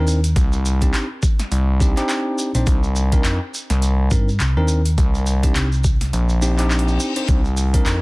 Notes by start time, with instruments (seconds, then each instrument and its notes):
Already playing: fingered electric bass D#2, tine electric piano C4 D4 D#4 A#4
0.07 maracas
0.24 closed hi-hat, maracas
0.36 analog synth bass C2, kick, closed hi-hat, maracas
0.52 maracas
0.66 maracas
0.81 tine electric piano C4 D4 D#4 G4, kick, closed hi-hat, maracas
0.94 clap, closed hi-hat, maracas
1.23 kick, maracas
1.39 snare, closed hi-hat, maracas
1.51 analog synth bass C2, closed hi-hat, maracas
1.80 tine electric piano C4 D4 D#4 G4, kick, maracas
1.97 tine electric piano C4 D4 D#4 G4, clap, closed hi-hat, maracas
2.09 clap, closed hi-hat, maracas
2.38 maracas
2.55 fingered electric bass A#1, tine electric piano C4 D4 D#4 C5, closed hi-hat, maracas
2.66 analog synth bass C2, kick, closed hi-hat, maracas
2.83 maracas
2.96 maracas
3.12 tine electric piano C4 D4 D#4 A#4, kick, closed hi-hat, maracas
3.24 analog synth bass F2, clap, closed hi-hat, maracas
3.54 maracas
3.70 analog synth bass C2, snare, closed hi-hat, maracas
3.82 closed hi-hat, maracas
4.11 fingered electric bass G2, tine electric piano C4 D4 D#4 A#4, kick, maracas
4.29 maracas
4.40 fingered electric bass C2, clap, closed hi-hat, maracas
4.57 fingered electric bass D#2, tine electric piano C4 D4 D#4 A#4
4.68 maracas
4.85 closed hi-hat, maracas
4.98 analog synth bass C2, kick, closed hi-hat, maracas
5.15 maracas
5.26 maracas
5.43 tine electric piano C4 D4 D#4 G4, kick, closed hi-hat, maracas
5.55 fingered electric bass C2, clap, closed hi-hat, maracas
5.72 maracas
5.84 kick, maracas
6.01 snare, closed hi-hat, maracas
6.13 analog synth bass A#1, closed hi-hat, reverse cymbal, maracas
6.29 maracas
6.42 tine electric piano C4 D4 D#4 G4, maracas
6.59 tine electric piano C4 D4 D#4 G4, clap, closed hi-hat, maracas
6.71 clap, maracas
6.79 closed hi-hat
6.88 maracas
7.00 maracas
7.16 tine electric piano C4 D4 D#4 C5, closed hi-hat, maracas
7.28 analog synth bass C2, kick, closed hi-hat, maracas
7.45 maracas
7.57 maracas
7.74 tine electric piano C4 D4 D#4 A#4, kick, closed hi-hat, maracas
7.86 analog synth bass F2, clap, closed hi-hat, maracas